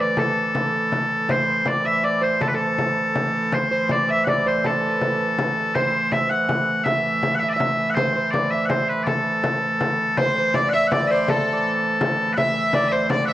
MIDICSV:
0, 0, Header, 1, 6, 480
1, 0, Start_track
1, 0, Tempo, 371747
1, 222, Time_signature, 6, 3, 24, 8
1, 8861, Tempo, 366748
1, 17327, End_track
2, 0, Start_track
2, 0, Title_t, "Bagpipes"
2, 0, Program_c, 0, 109
2, 6, Note_on_c, 0, 74, 80
2, 242, Note_off_c, 0, 74, 0
2, 242, Note_on_c, 0, 69, 74
2, 1685, Note_off_c, 0, 69, 0
2, 1685, Note_on_c, 0, 72, 82
2, 2170, Note_off_c, 0, 72, 0
2, 2170, Note_on_c, 0, 74, 80
2, 2398, Note_off_c, 0, 74, 0
2, 2398, Note_on_c, 0, 76, 94
2, 2632, Note_off_c, 0, 76, 0
2, 2632, Note_on_c, 0, 74, 80
2, 2882, Note_off_c, 0, 74, 0
2, 2882, Note_on_c, 0, 72, 74
2, 3117, Note_off_c, 0, 72, 0
2, 3117, Note_on_c, 0, 69, 69
2, 3205, Note_off_c, 0, 69, 0
2, 3205, Note_on_c, 0, 71, 62
2, 3290, Note_off_c, 0, 71, 0
2, 3290, Note_on_c, 0, 69, 73
2, 4566, Note_off_c, 0, 69, 0
2, 4566, Note_on_c, 0, 72, 86
2, 5059, Note_off_c, 0, 72, 0
2, 5059, Note_on_c, 0, 74, 83
2, 5302, Note_off_c, 0, 74, 0
2, 5302, Note_on_c, 0, 76, 97
2, 5479, Note_off_c, 0, 76, 0
2, 5479, Note_on_c, 0, 78, 87
2, 5532, Note_off_c, 0, 78, 0
2, 5532, Note_on_c, 0, 74, 87
2, 5784, Note_off_c, 0, 74, 0
2, 5784, Note_on_c, 0, 72, 76
2, 6018, Note_off_c, 0, 72, 0
2, 6018, Note_on_c, 0, 69, 75
2, 7419, Note_off_c, 0, 69, 0
2, 7419, Note_on_c, 0, 72, 88
2, 7901, Note_off_c, 0, 72, 0
2, 7901, Note_on_c, 0, 76, 87
2, 8128, Note_off_c, 0, 76, 0
2, 8128, Note_on_c, 0, 78, 88
2, 8827, Note_off_c, 0, 78, 0
2, 8827, Note_on_c, 0, 76, 89
2, 9497, Note_off_c, 0, 76, 0
2, 9497, Note_on_c, 0, 78, 89
2, 9554, Note_off_c, 0, 78, 0
2, 9554, Note_on_c, 0, 76, 89
2, 9678, Note_off_c, 0, 76, 0
2, 9678, Note_on_c, 0, 74, 78
2, 9734, Note_off_c, 0, 74, 0
2, 9734, Note_on_c, 0, 76, 88
2, 10222, Note_off_c, 0, 76, 0
2, 10222, Note_on_c, 0, 78, 81
2, 10279, Note_off_c, 0, 78, 0
2, 10279, Note_on_c, 0, 72, 81
2, 10756, Note_off_c, 0, 72, 0
2, 10756, Note_on_c, 0, 74, 75
2, 11011, Note_off_c, 0, 74, 0
2, 11011, Note_on_c, 0, 76, 86
2, 11209, Note_off_c, 0, 76, 0
2, 11209, Note_on_c, 0, 78, 70
2, 11262, Note_off_c, 0, 78, 0
2, 11262, Note_on_c, 0, 72, 70
2, 11513, Note_off_c, 0, 72, 0
2, 11513, Note_on_c, 0, 71, 70
2, 11700, Note_off_c, 0, 71, 0
2, 11700, Note_on_c, 0, 74, 73
2, 11751, Note_off_c, 0, 74, 0
2, 11751, Note_on_c, 0, 69, 73
2, 13192, Note_off_c, 0, 69, 0
2, 13192, Note_on_c, 0, 72, 86
2, 13683, Note_off_c, 0, 72, 0
2, 13683, Note_on_c, 0, 74, 91
2, 13870, Note_off_c, 0, 74, 0
2, 13870, Note_on_c, 0, 78, 104
2, 13926, Note_off_c, 0, 78, 0
2, 13926, Note_on_c, 0, 76, 104
2, 14108, Note_off_c, 0, 76, 0
2, 14108, Note_on_c, 0, 78, 88
2, 14166, Note_off_c, 0, 78, 0
2, 14167, Note_on_c, 0, 74, 88
2, 14369, Note_off_c, 0, 74, 0
2, 14369, Note_on_c, 0, 76, 79
2, 14416, Note_off_c, 0, 76, 0
2, 14416, Note_on_c, 0, 72, 79
2, 14660, Note_off_c, 0, 72, 0
2, 14660, Note_on_c, 0, 69, 78
2, 16021, Note_off_c, 0, 69, 0
2, 16021, Note_on_c, 0, 78, 88
2, 16074, Note_off_c, 0, 78, 0
2, 16074, Note_on_c, 0, 76, 88
2, 16558, Note_off_c, 0, 76, 0
2, 16558, Note_on_c, 0, 74, 83
2, 16739, Note_off_c, 0, 74, 0
2, 16739, Note_on_c, 0, 76, 81
2, 16790, Note_off_c, 0, 76, 0
2, 16790, Note_on_c, 0, 72, 81
2, 17028, Note_off_c, 0, 72, 0
2, 17028, Note_on_c, 0, 74, 85
2, 17225, Note_off_c, 0, 74, 0
2, 17225, Note_on_c, 0, 78, 85
2, 17268, Note_off_c, 0, 78, 0
2, 17268, Note_on_c, 0, 76, 85
2, 17327, Note_off_c, 0, 76, 0
2, 17327, End_track
3, 0, Start_track
3, 0, Title_t, "Fiddle"
3, 0, Program_c, 1, 110
3, 13209, Note_on_c, 1, 72, 77
3, 13687, Note_on_c, 1, 74, 82
3, 13706, Note_off_c, 1, 72, 0
3, 13923, Note_on_c, 1, 76, 87
3, 13943, Note_off_c, 1, 74, 0
3, 14156, Note_off_c, 1, 76, 0
3, 14164, Note_on_c, 1, 74, 83
3, 14656, Note_on_c, 1, 69, 74
3, 14675, Note_off_c, 1, 74, 0
3, 15184, Note_off_c, 1, 69, 0
3, 16082, Note_on_c, 1, 76, 78
3, 16792, Note_on_c, 1, 72, 72
3, 16811, Note_off_c, 1, 76, 0
3, 17028, Note_off_c, 1, 72, 0
3, 17033, Note_on_c, 1, 74, 78
3, 17251, Note_off_c, 1, 74, 0
3, 17260, Note_on_c, 1, 76, 78
3, 17327, Note_off_c, 1, 76, 0
3, 17327, End_track
4, 0, Start_track
4, 0, Title_t, "Harp"
4, 0, Program_c, 2, 46
4, 0, Note_on_c, 2, 69, 63
4, 0, Note_on_c, 2, 71, 72
4, 0, Note_on_c, 2, 74, 72
4, 222, Note_off_c, 2, 69, 0
4, 228, Note_on_c, 2, 69, 62
4, 1669, Note_on_c, 2, 72, 74
4, 1747, Note_off_c, 2, 71, 0
4, 2146, Note_off_c, 2, 74, 0
4, 2151, Note_on_c, 2, 74, 70
4, 2384, Note_on_c, 2, 76, 77
4, 2623, Note_off_c, 2, 74, 0
4, 2628, Note_on_c, 2, 74, 74
4, 2851, Note_off_c, 2, 72, 0
4, 2856, Note_on_c, 2, 72, 70
4, 3063, Note_off_c, 2, 69, 0
4, 3106, Note_on_c, 2, 69, 72
4, 3274, Note_off_c, 2, 69, 0
4, 3279, Note_on_c, 2, 69, 61
4, 4566, Note_off_c, 2, 72, 0
4, 4571, Note_on_c, 2, 72, 73
4, 4609, Note_off_c, 2, 76, 0
4, 4789, Note_off_c, 2, 72, 0
4, 4794, Note_on_c, 2, 72, 74
4, 5012, Note_off_c, 2, 74, 0
4, 5049, Note_on_c, 2, 74, 71
4, 5279, Note_on_c, 2, 76, 79
4, 5512, Note_off_c, 2, 74, 0
4, 5518, Note_on_c, 2, 74, 76
4, 5755, Note_off_c, 2, 72, 0
4, 5760, Note_on_c, 2, 72, 76
4, 5997, Note_off_c, 2, 69, 0
4, 6002, Note_on_c, 2, 69, 71
4, 6307, Note_on_c, 2, 71, 57
4, 6385, Note_off_c, 2, 72, 0
4, 7431, Note_on_c, 2, 72, 81
4, 7504, Note_off_c, 2, 76, 0
4, 7509, Note_off_c, 2, 71, 0
4, 7901, Note_on_c, 2, 76, 74
4, 7902, Note_off_c, 2, 74, 0
4, 8138, Note_on_c, 2, 78, 80
4, 8838, Note_off_c, 2, 69, 0
4, 8858, Note_off_c, 2, 76, 0
4, 8863, Note_on_c, 2, 76, 76
4, 9594, Note_off_c, 2, 76, 0
4, 9599, Note_on_c, 2, 76, 77
4, 9773, Note_off_c, 2, 76, 0
4, 9778, Note_on_c, 2, 76, 78
4, 10002, Note_off_c, 2, 72, 0
4, 10232, Note_off_c, 2, 78, 0
4, 10320, Note_on_c, 2, 72, 78
4, 10549, Note_off_c, 2, 72, 0
4, 10554, Note_on_c, 2, 72, 69
4, 10795, Note_on_c, 2, 74, 67
4, 11027, Note_off_c, 2, 76, 0
4, 11032, Note_on_c, 2, 76, 71
4, 11272, Note_off_c, 2, 72, 0
4, 11278, Note_on_c, 2, 72, 65
4, 11768, Note_on_c, 2, 69, 60
4, 13202, Note_off_c, 2, 72, 0
4, 13207, Note_on_c, 2, 72, 78
4, 13212, Note_off_c, 2, 74, 0
4, 13287, Note_off_c, 2, 76, 0
4, 13453, Note_off_c, 2, 72, 0
4, 13459, Note_on_c, 2, 72, 70
4, 13695, Note_on_c, 2, 74, 75
4, 13930, Note_on_c, 2, 76, 92
4, 14165, Note_off_c, 2, 74, 0
4, 14170, Note_on_c, 2, 74, 75
4, 14411, Note_off_c, 2, 72, 0
4, 14416, Note_on_c, 2, 72, 74
4, 14643, Note_off_c, 2, 69, 0
4, 14654, Note_on_c, 2, 69, 73
4, 14961, Note_off_c, 2, 74, 0
4, 14966, Note_on_c, 2, 74, 67
4, 16072, Note_off_c, 2, 76, 0
4, 16077, Note_on_c, 2, 76, 79
4, 16550, Note_off_c, 2, 74, 0
4, 16555, Note_on_c, 2, 74, 71
4, 16790, Note_off_c, 2, 72, 0
4, 16795, Note_on_c, 2, 72, 74
4, 17018, Note_off_c, 2, 74, 0
4, 17023, Note_on_c, 2, 74, 75
4, 17252, Note_off_c, 2, 76, 0
4, 17257, Note_on_c, 2, 76, 77
4, 17327, Note_off_c, 2, 69, 0
4, 17327, Note_off_c, 2, 72, 0
4, 17327, Note_off_c, 2, 74, 0
4, 17327, Note_off_c, 2, 76, 0
4, 17327, End_track
5, 0, Start_track
5, 0, Title_t, "Hurdy-gurdy"
5, 0, Program_c, 3, 110
5, 0, Note_on_c, 3, 45, 66
5, 0, Note_on_c, 3, 52, 70
5, 1653, Note_off_c, 3, 45, 0
5, 1653, Note_off_c, 3, 52, 0
5, 1653, Note_on_c, 3, 45, 68
5, 1653, Note_on_c, 3, 52, 66
5, 7431, Note_off_c, 3, 45, 0
5, 7431, Note_on_c, 3, 45, 63
5, 7433, Note_off_c, 3, 52, 0
5, 7433, Note_on_c, 3, 52, 67
5, 13193, Note_off_c, 3, 52, 0
5, 13193, Note_on_c, 3, 52, 67
5, 13195, Note_off_c, 3, 45, 0
5, 13195, Note_on_c, 3, 45, 72
5, 17327, Note_off_c, 3, 45, 0
5, 17327, Note_off_c, 3, 52, 0
5, 17327, End_track
6, 0, Start_track
6, 0, Title_t, "Frame drum"
6, 218, Note_on_c, 9, 64, 78
6, 347, Note_off_c, 9, 64, 0
6, 458, Note_on_c, 9, 64, 26
6, 587, Note_off_c, 9, 64, 0
6, 706, Note_on_c, 9, 64, 78
6, 835, Note_off_c, 9, 64, 0
6, 1188, Note_on_c, 9, 64, 77
6, 1317, Note_off_c, 9, 64, 0
6, 1439, Note_on_c, 9, 64, 21
6, 1568, Note_off_c, 9, 64, 0
6, 1667, Note_on_c, 9, 64, 79
6, 1796, Note_off_c, 9, 64, 0
6, 2137, Note_on_c, 9, 64, 76
6, 2266, Note_off_c, 9, 64, 0
6, 2383, Note_on_c, 9, 64, 26
6, 2512, Note_off_c, 9, 64, 0
6, 3115, Note_on_c, 9, 64, 82
6, 3244, Note_off_c, 9, 64, 0
6, 3595, Note_on_c, 9, 64, 77
6, 3724, Note_off_c, 9, 64, 0
6, 3830, Note_on_c, 9, 64, 26
6, 3959, Note_off_c, 9, 64, 0
6, 4071, Note_on_c, 9, 64, 81
6, 4200, Note_off_c, 9, 64, 0
6, 4550, Note_on_c, 9, 64, 85
6, 4679, Note_off_c, 9, 64, 0
6, 5027, Note_on_c, 9, 64, 75
6, 5156, Note_off_c, 9, 64, 0
6, 5270, Note_on_c, 9, 64, 25
6, 5399, Note_off_c, 9, 64, 0
6, 5515, Note_on_c, 9, 64, 72
6, 5644, Note_off_c, 9, 64, 0
6, 5995, Note_on_c, 9, 64, 65
6, 6124, Note_off_c, 9, 64, 0
6, 6474, Note_on_c, 9, 64, 64
6, 6603, Note_off_c, 9, 64, 0
6, 6726, Note_on_c, 9, 64, 23
6, 6855, Note_off_c, 9, 64, 0
6, 6953, Note_on_c, 9, 64, 76
6, 7082, Note_off_c, 9, 64, 0
6, 7426, Note_on_c, 9, 64, 76
6, 7555, Note_off_c, 9, 64, 0
6, 7898, Note_on_c, 9, 64, 72
6, 8027, Note_off_c, 9, 64, 0
6, 8146, Note_on_c, 9, 64, 24
6, 8276, Note_off_c, 9, 64, 0
6, 8376, Note_on_c, 9, 64, 78
6, 8506, Note_off_c, 9, 64, 0
6, 8852, Note_on_c, 9, 64, 70
6, 8983, Note_off_c, 9, 64, 0
6, 9337, Note_on_c, 9, 64, 76
6, 9468, Note_off_c, 9, 64, 0
6, 9589, Note_on_c, 9, 64, 27
6, 9720, Note_off_c, 9, 64, 0
6, 9827, Note_on_c, 9, 64, 80
6, 9958, Note_off_c, 9, 64, 0
6, 10308, Note_on_c, 9, 64, 82
6, 10439, Note_off_c, 9, 64, 0
6, 10790, Note_on_c, 9, 64, 76
6, 10921, Note_off_c, 9, 64, 0
6, 11027, Note_on_c, 9, 64, 27
6, 11157, Note_off_c, 9, 64, 0
6, 11263, Note_on_c, 9, 64, 82
6, 11394, Note_off_c, 9, 64, 0
6, 11749, Note_on_c, 9, 64, 80
6, 11880, Note_off_c, 9, 64, 0
6, 11980, Note_on_c, 9, 64, 25
6, 12111, Note_off_c, 9, 64, 0
6, 12231, Note_on_c, 9, 64, 81
6, 12362, Note_off_c, 9, 64, 0
6, 12713, Note_on_c, 9, 64, 83
6, 12844, Note_off_c, 9, 64, 0
6, 13195, Note_on_c, 9, 64, 90
6, 13326, Note_off_c, 9, 64, 0
6, 13673, Note_on_c, 9, 64, 79
6, 13804, Note_off_c, 9, 64, 0
6, 13912, Note_on_c, 9, 64, 28
6, 14043, Note_off_c, 9, 64, 0
6, 14164, Note_on_c, 9, 64, 89
6, 14295, Note_off_c, 9, 64, 0
6, 14643, Note_on_c, 9, 64, 81
6, 14774, Note_off_c, 9, 64, 0
6, 15366, Note_on_c, 9, 64, 27
6, 15497, Note_off_c, 9, 64, 0
6, 15596, Note_on_c, 9, 64, 88
6, 15727, Note_off_c, 9, 64, 0
6, 16079, Note_on_c, 9, 64, 84
6, 16209, Note_off_c, 9, 64, 0
6, 16542, Note_on_c, 9, 64, 80
6, 16673, Note_off_c, 9, 64, 0
6, 16788, Note_on_c, 9, 64, 26
6, 16919, Note_off_c, 9, 64, 0
6, 17023, Note_on_c, 9, 64, 82
6, 17154, Note_off_c, 9, 64, 0
6, 17327, End_track
0, 0, End_of_file